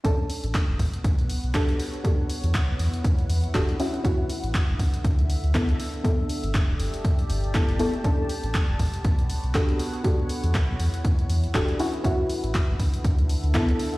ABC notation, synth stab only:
X:1
M:4/4
L:1/8
Q:"Swing 16ths" 1/4=120
K:Bm
V:1 name="Synth stab"
[CDA]6 [DFGA]2 | [DFGA]6 [DFGA] [CEF] | [CEF]6 [B,EA]2 | [B,EA]6 [B,EA] [B,EA] |
[CDA]6 [DFGA]2 | [DFGA]6 [DFGA] [CEF] | [CEF]6 [B,EA]2 |]